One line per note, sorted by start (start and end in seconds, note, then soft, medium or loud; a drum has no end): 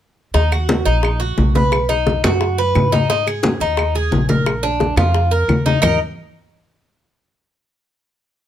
0.34 0.82 D#2 medium
0.34 0.51 D#4 medium
0.34 high bongo medium
0.34 high conga soft
0.52 0.85 F#4 medium
0.52 high bongo soft
0.52 high conga soft
0.52 claves medium
0.69 high bongo medium
0.69 high conga medium
0.85 1.34 A#1 medium
0.85 1.19 D#4 medium
0.85 high bongo soft
0.85 high conga soft
1.03 high bongo medium
1.03 high conga soft
1.03 claves medium
1.20 1.53 F#4 medium
1.20 high conga soft
1.38 2.18 B1 medium
1.38 high bongo soft
1.38 low bongo medium
1.38 high conga medium
1.55 1.89 B4 medium
1.55 high bongo soft
1.55 high conga medium
1.72 high bongo medium
1.72 high conga soft
1.72 claves medium
1.89 2.22 D#4 medium
1.89 high bongo soft
1.89 high conga soft
2.06 high bongo medium
2.06 high conga medium
2.24 2.71 F#2 medium
2.24 2.57 F#4 medium
2.24 high bongo soft
2.24 high conga medium
2.24 claves medium
2.41 high bongo medium
2.41 high conga soft
2.58 2.91 B4 medium
2.58 high conga soft
2.75 3.55 G#2 medium
2.75 high bongo soft
2.75 low bongo medium
2.75 high conga medium
2.75 claves medium
2.92 3.09 D#4 medium
2.92 high bongo soft
2.92 high conga medium
3.10 3.26 D#4 medium
3.10 high bongo medium
3.10 high conga soft
3.26 3.60 G#4 medium
3.26 high bongo soft
3.26 high conga soft
3.26 claves medium
3.43 high bongo medium
3.43 high conga medium
3.60 4.08 D#2 medium
3.60 3.94 D#4 medium
3.60 high bongo soft
3.60 high conga soft
3.77 high bongo medium
3.77 high conga soft
3.77 claves medium
3.95 4.28 G#4 medium
3.95 high conga soft
4.11 4.91 A#1 medium
4.11 high bongo soft
4.11 low bongo medium
4.11 high conga medium
4.29 4.62 A#4 medium
4.29 high bongo soft
4.29 high conga medium
4.46 high bongo medium
4.46 high conga soft
4.46 claves medium
4.63 4.96 D4 medium
4.63 high bongo soft
4.63 high conga soft
4.80 high bongo medium
4.80 high conga medium
4.96 5.44 F2 loud
4.96 5.30 F4 medium
4.96 high bongo soft
4.96 high conga medium
4.96 claves medium
5.14 high bongo medium
5.14 high conga soft
5.31 5.64 A#4 medium
5.31 high conga soft
5.48 5.78 D#2 medium
5.48 high bongo soft
5.48 low bongo medium
5.48 high conga medium
5.48 claves medium
5.66 5.81 D#4 medium
5.66 high bongo soft
5.66 high conga medium
5.82 5.98 D#2 medium
5.82 5.98 D#4 medium
5.82 5.98 A#4 medium
5.82 5.99 D#5 medium
5.82 low bongo medium
5.82 low conga medium
5.82 claves medium